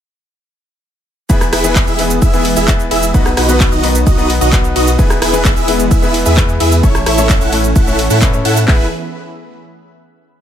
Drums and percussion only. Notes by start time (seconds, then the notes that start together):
1.30 kick, closed hi-hat, cabasa
1.41 cross-stick, closed hi-hat, cabasa
1.53 cross-stick, open hi-hat, ride
1.64 closed hi-hat, cabasa
1.76 kick, clap, closed hi-hat, cabasa
1.87 closed hi-hat, cabasa
1.99 open hi-hat, ride
2.10 closed hi-hat, cabasa
2.22 kick, closed hi-hat, cabasa
2.33 closed hi-hat, cabasa
2.45 open hi-hat, ride
2.56 closed hi-hat, cabasa
2.68 kick, clap, closed hi-hat, cabasa
2.80 closed hi-hat, cabasa
2.91 open hi-hat, ride
3.03 closed hi-hat, cabasa
3.14 kick, closed hi-hat, cabasa
3.26 cross-stick, closed hi-hat, cabasa
3.37 cross-stick, open hi-hat, ride
3.49 closed hi-hat, cabasa
3.60 kick, clap, closed hi-hat, cabasa
3.72 closed hi-hat, cabasa
3.84 open hi-hat, ride
3.95 closed hi-hat, cabasa
4.07 kick, closed hi-hat, cabasa
4.18 closed hi-hat, cabasa
4.30 open hi-hat, ride
4.41 closed hi-hat, cabasa
4.53 kick, clap, closed hi-hat, cabasa
4.64 closed hi-hat, cabasa
4.76 open hi-hat, ride
4.87 closed hi-hat, cabasa
4.99 kick, closed hi-hat, cabasa
5.10 cross-stick, closed hi-hat, cabasa
5.22 cross-stick, open hi-hat, ride
5.34 closed hi-hat, cabasa
5.45 kick, clap, closed hi-hat, cabasa
5.56 closed hi-hat, cabasa
5.68 open hi-hat, ride
5.80 closed hi-hat, cabasa
5.91 kick, closed hi-hat, cabasa
6.03 closed hi-hat, cabasa
6.14 open hi-hat, ride
6.26 closed hi-hat, cabasa
6.37 kick, clap, closed hi-hat, cabasa
6.49 closed hi-hat, cabasa
6.60 open hi-hat, ride
6.72 closed hi-hat, cabasa
6.83 kick, closed hi-hat, cabasa
6.95 cross-stick, closed hi-hat, cabasa
7.06 cross-stick, open hi-hat, ride
7.18 closed hi-hat, cabasa
7.29 kick, clap, closed hi-hat, cabasa
7.41 closed hi-hat, cabasa
7.53 open hi-hat, ride
7.64 closed hi-hat, cabasa
7.76 kick, closed hi-hat, cabasa
7.87 closed hi-hat, cabasa
7.99 open hi-hat, ride
8.10 closed hi-hat, cabasa
8.22 kick, clap, closed hi-hat, cabasa
8.33 closed hi-hat, cabasa
8.45 open hi-hat, ride
8.57 closed hi-hat, cabasa
8.68 kick, clap